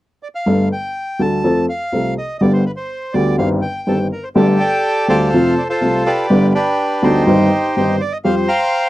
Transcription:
0.23 bandoneon D5
0.35 bandoneon F5
0.46 upright piano G1 G2 G3 A3 D4 A4
0.72 bandoneon G5
1.19 upright piano D2 D3 G3 A3 D4 A4, bandoneon A5
1.44 upright piano F2 F3 A3 C4 A4
1.69 bandoneon F5
1.92 upright piano C2 C3 F3 A3 C4 A4
2.18 bandoneon D#5
2.39 upright piano G1 G2 D3 G3 B3 G4, bandoneon D5 D#5
2.53 bandoneon C5
2.66 bandoneon B4
2.76 bandoneon C5
3.13 upright piano D2 D3 G3 B3 G4, bandoneon D5
3.38 upright piano G1 G2 D#3 G3 C4 G4, bandoneon F5
3.62 bandoneon G5
3.87 upright piano G1 G2 D#3 G3 C4 G4, bandoneon A4
4.12 bandoneon A#4
4.23 bandoneon C5
4.35 upright piano G1 G2 D3 G3 A3 G4, bandoneon G4 A4 D5
4.60 bandoneon D5 G5
5.08 upright piano D2 D3 G3 A3 G4, bandoneon A4 C5 F5
5.33 upright piano F2 C3 F3 A3 F4
5.58 bandoneon D5
5.69 bandoneon F4 A4 C5
5.81 upright piano C2 C3 F3 A3 F4
6.06 bandoneon G4 B4 D5
6.30 upright piano G1 G2 D3 G3 B3 G4
6.54 bandoneon D4 G4 B4
7.02 upright piano D2 D3 G3 B3 G4, bandoneon D#4 G4 C5
7.26 upright piano G1 G2 D#3 G3 C4 G4
7.76 upright piano G1 G2 D#3 G3 C4 G4, bandoneon C5
8.01 bandoneon D5
8.12 bandoneon D#5
8.24 upright piano F2 F3 G3 C4 G4, bandoneon C5 F5
8.48 bandoneon F5 G5 A#5

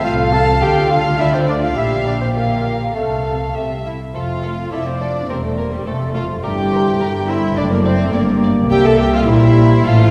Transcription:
Already playing: cor anglais A4, flute F5
0.04 double bass section C2, cello section C3, bassoon F4, viola section A4, violin section F5, clarinet F5
0.33 bassoon A4, french horn section A4 F5, violin section A5, clarinet A5
0.62 double bass section D2, cello section D3, viola section F4, bassoon G4, violin section G5, clarinet G5
0.91 bassoon F4, french horn section A4 F5, clarinet F5, violin section F5
1.19 bassoon E4, violin section D5 E5, clarinet E5
1.34 bassoon C4, violin section C5, clarinet C5
1.48 bassoon D4, french horn section A4 F5, violin section D5, clarinet D5
1.63 bassoon F4, clarinet F5, violin section F5
1.76 double bass section A#1, cello section A#2, bassoon E4, cor anglais G4, french horn section G4 F5, viola section G4, clarinet E5, violin section E5 F5, flute F5
2.06 bassoon D4, clarinet D5, violin section D5
2.21 bassoon C4, clarinet C5, violin section C5
2.35 bassoon A#3, viola section F4, french horn section G4 F5, clarinet A#4, violin section A#4 F5
2.95 double bass section C2, cello section C3, bassoon A3, violin section A4 F5, cor anglais A4, viola section A4, clarinet A4, french horn section A4 F5
3.55 double bass section C2, cello section C3, cor anglais G4, french horn section G4 E5, violin section E5, flute E5
3.85 viola section E4, clarinet E4, flute E5, violin section E5
4.14 double bass section F1, cello section F2, bassoon A3, french horn section C4, clarinet F4, viola section F4, violin section A4 F5, cor anglais C5, flute F5
4.43 bassoon F3, french horn section A3, violin section A4
4.72 double bass section F1, cello section F2, clarinet E4, viola section E4, violin section A4 E5, cor anglais D5, flute E5
4.86 clarinet C4, viola section C4, flute C5, violin section C5
5.00 clarinet D4, viola section D4, violin section A4 D5, flute D5
5.29 double bass section E1, cello section E2, bassoon G3, french horn section G3, clarinet C4, viola section C4, violin section A#4 C5, cor anglais C5, flute C5
5.43 clarinet A3, viola section A3, violin section A4, flute A4
5.58 clarinet A#3, viola section A#3, flute A#4, violin section A#4
5.72 clarinet G3, viola section G3, flute G4, violin section G4
5.86 double bass section F1, cello section F2, french horn section F3, viola section A3, clarinet A3, bassoon A3, flute A4, violin section A4, cor anglais C5
6.14 clarinet F4, viola section F4, violin section A4 F5, flute F5
6.43 double bass section G1, cello section G2, french horn section E3, bassoon A3, viola section G4, clarinet G4, violin section A#4 G5, cor anglais D5, flute G5
6.72 violin section A#4, cor anglais C5
7.00 double bass section G1, cello section G2, french horn section D3, violin section A#4, cor anglais A#4
7.27 french horn section G3, clarinet E4, viola section E4, violin section A#4 E5, cor anglais C5, flute E5
7.57 double bass section F#1, cello section F#2, french horn section A3, clarinet D4, viola section D4, flute D5, violin section D5, cor anglais D5
7.70 clarinet A#3, viola section A#3, violin section A#4, flute A#4
7.84 viola section C4, clarinet C4, violin section C5 D5, flute C5
8.13 double bass section G1, cello section G2, bassoon G3, viola section A#3, clarinet A#3, french horn section A#3, violin section A#4 D5, flute A#4, cor anglais D5
8.43 violin section D5
8.70 double bass section C2, cello section C3, bassoon G3, viola section G4, clarinet G4, cor anglais E5, violin section G5, flute G5
8.84 viola section A4, clarinet A4, violin section E5 A5, flute A5
8.99 viola section G4, clarinet G4, violin section G5, flute G5
9.13 clarinet F4, viola section F4, violin section E5 F5, flute F5
9.27 double bass section A#1, cello section A#2, french horn section G3, clarinet E4, viola section E4, violin section A#4 E5, cor anglais C5, flute E5
9.42 violin section C5
9.57 violin section A#4
9.71 violin section C5
9.84 double bass section A1, cello section A2, bassoon A3, french horn section A3, clarinet F4, viola section F4, violin section A4 F5, flute F5
10.00 violin section C5

